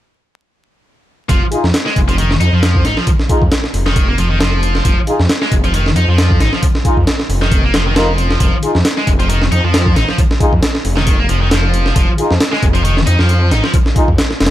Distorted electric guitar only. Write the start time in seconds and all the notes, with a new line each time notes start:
1.29 F3
1.86 G#3
2.08 F3
2.18 D#3
2.40 D#4
2.53 F3
2.85 D#4
2.98 F3
3.86 D#3
4.08 A#3
4.19 F3
4.31 D#3
4.41 F3
4.85 F3
5.42 G#3
5.64 F3
5.74 D#3
5.96 D#4
6.09 F3
6.41 D#4
6.53 F3
7.42 D#3
7.64 A#3
7.74 F3
7.86 D#3
7.96 F3
8.41 F3
8.98 G#3
9.20 F3
9.29 D#3
9.52 D#4
9.64 F3
9.96 D#4
10.09 F3
10.97 D#3
11.19 A#3
11.29 F3
11.42 D#3
11.51 F3
11.96 F3
12.52 G#3
12.75 F3
12.85 D#3
13.07 D#4
13.19 F3
13.52 D#4
13.63 F3